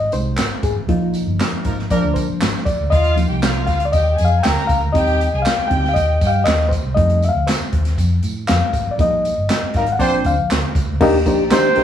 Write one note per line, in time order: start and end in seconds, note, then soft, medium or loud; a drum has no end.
0.00 0.12 D#5 loud
0.12 0.34 C2 medium
0.12 0.36 G3 soft
0.12 0.36 G#3 soft
0.12 0.36 D#4 medium
0.12 0.66 C5 loud
0.12 closed hi-hat medium
0.12 tambourine medium
0.37 0.49 G#1 medium
0.37 snare loud
0.37 clap loud
0.37 closed hi-hat medium
0.37 tambourine medium
0.63 0.74 G#1 medium
0.63 0.75 G#4 medium
0.63 kick medium
0.63 closed hi-hat medium
0.63 tambourine soft
0.76 0.87 A1 loud
0.88 1.20 A#1 loud
0.88 1.86 F3 medium
0.88 1.87 A#3 medium
0.88 1.87 D#4 medium
0.88 1.13 F4 medium
0.88 kick loud
0.88 closed hi-hat medium
1.14 closed hi-hat medium
1.14 tambourine medium
1.26 1.37 G1 medium
1.40 snare loud
1.40 clap medium
1.40 closed hi-hat medium
1.40 tambourine medium
1.52 muted fingered electric bass stroke medium
1.65 1.86 G#1 medium
1.65 1.76 F3 medium
1.65 1.76 D#4 medium
1.65 1.76 A#4 loud
1.65 kick medium
1.65 closed hi-hat medium
1.65 tambourine soft
1.79 snare soft
1.90 2.01 A#1 loud
1.90 2.63 F3 soft
1.90 2.27 F3 loud
1.90 2.63 A#3 medium
1.90 2.27 D4 loud
1.90 2.64 D4 medium
1.90 2.27 A#4 loud
1.90 2.17 D5 medium
1.90 kick medium
1.90 closed hi-hat medium
1.90 tambourine medium
2.04 2.14 D2 medium
2.14 2.62 C5 medium
2.14 kick medium
2.14 closed hi-hat medium
2.14 tambourine medium
2.29 2.39 A#1 medium
2.41 2.52 G#1 medium
2.41 snare loud
2.41 clap medium
2.41 closed hi-hat medium
2.41 tambourine medium
2.56 snare soft
2.65 2.77 A#1 medium
2.65 2.92 D5 medium
2.65 kick loud
2.65 closed hi-hat medium
2.65 tambourine soft
2.79 2.90 D2 medium
2.90 3.23 D#2 medium
2.90 3.28 F4 loud
2.90 3.15 D#5 loud
2.90 3.28 F5 loud
2.90 kick loud
2.90 closed hi-hat medium
3.04 closed hi-hat soft
3.16 3.50 F3 soft
3.16 3.51 A#3 medium
3.16 3.51 D#4 medium
3.16 closed hi-hat medium
3.16 tambourine medium
3.29 3.68 C2 medium
3.29 3.40 G4 medium
3.29 3.40 G5 medium
3.42 3.91 F4 medium
3.42 3.91 F5 loud
3.42 snare loud
3.42 clap medium
3.42 closed hi-hat medium
3.42 tambourine medium
3.67 3.89 D2 loud
3.67 3.84 F5 medium
3.67 kick medium
3.67 snare soft
3.67 closed hi-hat medium
3.67 tambourine soft
3.80 closed hi-hat medium
3.85 3.93 D5 medium
3.92 4.14 D#2 loud
3.92 4.13 G4 medium
3.92 4.28 D#5 medium
3.92 4.14 G5 medium
3.92 kick medium
3.92 closed hi-hat medium
3.92 tambourine medium
4.18 4.40 F2 medium
4.18 4.39 G#4 medium
4.18 4.39 G#5 medium
4.18 closed hi-hat medium
4.18 tambourine medium
4.25 4.42 F5 loud
4.43 4.55 D2 loud
4.43 4.79 A#4 medium
4.43 4.67 G5 loud
4.43 4.79 A#5 loud
4.43 snare loud
4.43 clap medium
4.43 closed hi-hat medium
4.43 tambourine loud
4.58 snare soft
4.67 4.80 C#2 loud
4.67 4.79 F5 medium
4.67 kick medium
4.67 closed hi-hat medium
4.67 tambourine soft
4.82 4.93 D2 loud
4.93 5.25 D#2 loud
4.93 5.28 G3 medium
4.93 5.28 C4 medium
4.93 5.28 D#4 medium
4.93 5.31 G4 loud
4.93 5.46 D#5 loud
4.93 5.31 G5 loud
4.93 kick loud
4.93 closed hi-hat medium
5.07 closed hi-hat soft
5.21 closed hi-hat medium
5.21 tambourine soft
5.33 5.43 C2 medium
5.33 5.44 G#4 medium
5.33 5.44 G#5 medium
5.42 5.70 F5 loud
5.42 clap loud
5.42 tambourine medium
5.46 6.18 G4 medium
5.46 6.18 G5 loud
5.46 snare loud
5.46 closed hi-hat medium
5.58 muted fingered electric bass stroke medium
5.68 5.91 D2 loud
5.68 5.93 G3 soft
5.68 5.93 C4 soft
5.68 5.93 D#4 medium
5.68 5.88 G5 medium
5.68 kick medium
5.68 closed hi-hat medium
5.85 snare soft
5.89 5.96 F5 medium
5.94 6.16 D#2 loud
5.94 6.30 D#5 medium
5.94 kick medium
5.94 closed hi-hat medium
5.94 tambourine medium
6.21 6.42 G2 medium
6.21 6.43 G4 medium
6.21 6.43 G5 medium
6.21 kick loud
6.21 closed hi-hat medium
6.21 tambourine medium
6.27 6.46 F5 medium
6.44 6.76 D#2 medium
6.44 6.71 D#5 loud
6.44 snare loud
6.44 clap loud
6.44 closed hi-hat medium
6.44 tambourine medium
6.61 snare soft
6.69 6.94 C5 medium
6.69 kick medium
6.69 closed hi-hat medium
6.73 tambourine soft
6.83 6.94 C2 medium
6.94 7.28 F2 loud
6.94 7.30 G3 medium
6.94 7.30 A3 medium
6.94 7.30 D#4 medium
6.94 7.23 D#5 loud
6.94 kick loud
6.94 closed hi-hat medium
7.10 closed hi-hat medium
7.22 7.30 E5 medium
7.22 closed hi-hat medium
7.22 tambourine soft
7.29 7.47 F5 medium
7.35 7.45 D2 medium
7.47 7.94 C5 medium
7.47 snare loud
7.47 clap medium
7.47 closed hi-hat medium
7.47 tambourine medium
7.60 muted fingered electric bass stroke medium
7.73 7.93 D#2 medium
7.73 kick medium
7.73 closed hi-hat medium
7.85 snare soft
7.85 closed hi-hat medium
7.98 8.19 F2 loud
7.98 kick medium
7.98 closed hi-hat medium
7.98 tambourine medium
8.23 8.44 A2 medium
8.23 closed hi-hat medium
8.23 tambourine medium
8.48 8.59 F2 loud
8.48 8.93 F5 loud
8.48 snare loud
8.48 clap medium
8.48 closed hi-hat medium
8.48 tambourine medium
8.73 8.84 G#1 medium
8.73 kick medium
8.73 closed hi-hat medium
8.73 tambourine soft
8.87 8.97 A1 medium
8.91 8.99 D5 medium
8.98 9.30 A#1 loud
8.98 9.32 G3 medium
8.98 9.33 A#3 medium
8.98 9.33 D#4 medium
8.98 9.78 D#5 loud
8.98 kick loud
8.98 closed hi-hat medium
9.25 closed hi-hat medium
9.25 tambourine medium
9.37 9.47 G1 medium
9.50 snare loud
9.50 clap medium
9.50 closed hi-hat medium
9.50 tambourine medium
9.63 muted fingered electric bass stroke medium
9.74 9.95 G#1 loud
9.74 9.86 G3 medium
9.74 9.86 D#4 medium
9.74 9.86 A#4 loud
9.74 9.95 F5 medium
9.74 kick medium
9.74 snare soft
9.74 closed hi-hat medium
9.74 tambourine soft
9.86 closed hi-hat medium
9.92 9.99 F#5 medium
9.99 10.20 A#1 loud
9.99 10.36 F3 loud
9.99 10.33 A#3 medium
9.99 10.33 C4 medium
9.99 10.36 D4 loud
9.99 10.34 D4 medium
9.99 10.36 C5 loud
9.99 10.27 G5 loud
9.99 kick medium
9.99 closed hi-hat medium
9.99 tambourine medium
10.24 10.35 D2 medium
10.24 10.49 F5 loud
10.24 kick medium
10.24 closed hi-hat medium
10.24 tambourine medium
10.39 10.48 A#1 loud
10.51 10.61 D2 medium
10.51 snare loud
10.51 clap medium
10.51 closed hi-hat medium
10.51 tambourine medium
10.75 10.86 C#2 medium
10.75 kick loud
10.75 closed hi-hat medium
10.75 tambourine soft
10.89 10.99 D2 medium
11.01 11.21 D#2 loud
11.01 11.17 A#3 loud
11.01 11.17 D4 loud
11.01 11.17 D#4 loud
11.01 11.84 D#4 loud
11.01 11.17 G4 loud
11.01 11.18 A#4 loud
11.01 11.84 D5 medium
11.01 11.84 G5 loud
11.01 kick loud
11.01 crash loud
11.01 tambourine soft
11.26 11.46 A#1 medium
11.26 11.42 A#3 medium
11.26 11.42 D4 medium
11.26 11.42 D#4 medium
11.26 11.42 G4 medium
11.26 11.43 C5 loud
11.26 kick medium
11.26 closed hi-hat medium
11.26 tambourine medium
11.50 11.72 D#3 loud
11.50 11.67 A#3 loud
11.50 11.67 D4 medium
11.50 11.67 D#4 medium
11.50 11.67 G4 medium
11.50 11.67 C5 loud
11.50 11.84 C5 medium
11.50 11.84 C6 medium
11.50 snare loud
11.50 clap medium
11.50 closed hi-hat medium
11.50 tambourine medium
11.76 11.84 A#1 medium
11.76 11.84 A#3 medium
11.76 11.84 D4 medium
11.76 11.84 D#4 medium
11.76 11.84 G4 medium
11.76 11.84 A#4 medium
11.76 snare soft
11.76 closed hi-hat medium